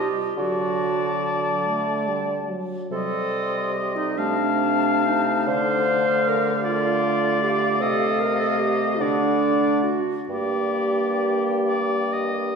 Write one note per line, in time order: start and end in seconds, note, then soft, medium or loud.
0.00 0.36 G4 medium
0.37 2.54 D3 soft
0.37 1.51 F#3 soft
0.37 1.60 F#4 medium
0.37 2.55 D5 soft
0.37 2.54 A5 soft
1.64 2.09 A3 soft
2.07 2.50 G3 soft
2.49 2.91 F#3 soft
2.91 5.49 C3 soft
2.91 4.19 G3 soft
2.91 3.76 A4 medium
2.91 4.20 D#5 soft
2.91 4.12 C6 soft
3.75 3.97 G4 medium
3.96 4.19 D#4 medium
4.16 9.00 A3 soft
4.16 5.07 D4 medium
4.16 5.49 F5 soft
4.16 5.45 A5 soft
5.06 5.50 D#4 medium
5.47 7.82 D3 medium
5.47 6.30 C5 medium
5.47 6.63 F5 soft
6.29 6.66 A#4 medium
6.64 7.42 F4 medium
6.64 7.83 D5 soft
6.64 9.02 F5 soft
7.43 7.82 G4 medium
7.80 9.02 C3 medium
7.80 8.22 A4 medium
7.80 9.02 D#5 soft
8.20 8.39 A#4 medium
8.39 8.61 A4 medium
8.59 9.01 G4 medium
9.00 9.98 D3 soft
9.00 9.96 A3 soft
9.00 9.85 D4 medium
9.00 9.98 D5 soft
9.00 9.97 F#5 soft
9.84 10.16 F#4 medium
10.29 12.56 G2 soft
10.29 12.56 A#3 soft
10.29 12.56 G4 medium
10.29 11.54 D5 soft
10.29 12.56 G5 soft
11.66 12.14 D5 soft
12.12 12.56 D#5 soft